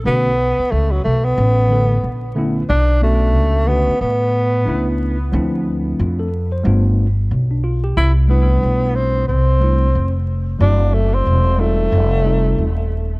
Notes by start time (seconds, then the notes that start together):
0.04 B1 D3 A3 B3 C#4 F#4
0.59 muted upright bass stroke
0.72 C#2 A3
0.91 F#3
1.04 B1 A3
1.24 B3
1.38 A1
1.69 D3 A3 B3 C#4 A4
2.03 A#1
2.35 D3 A3 B3 C#4 E4
2.69 B1 D4
3.01 A3 B3 C#4 D4 F#4
3.35 C#2
3.67 D3 A3 B3 C#4 F#4
3.89 muted upright bass stroke
4.01 A2 B3
4.66 C#2 A3 B3 C#4 D4 E4
5.32 D2 F3 A3 C4 D4 E4
5.99 F2 F4
6.19 A4
6.52 C5
6.63 G1 G3 A3 B3 D4 F4
7.31 B1
7.51 D4
7.64 F4
7.84 G4
7.97 C2 E4
8.28 G3 A3 B3 D4 E4
8.63 B1
8.95 C4
9.28 C2 C4
9.60 G3 A3 C4 D4 E4
9.95 F1
10.59 F#1 F#3 A3 C4 D4 E4 F#4
10.94 A3
11.14 C4
11.27 E1
11.57 G3 A3 C4 D#4 F4
11.92 F1
12.23 G3 A3 C4 D#4 F4
12.58 D#1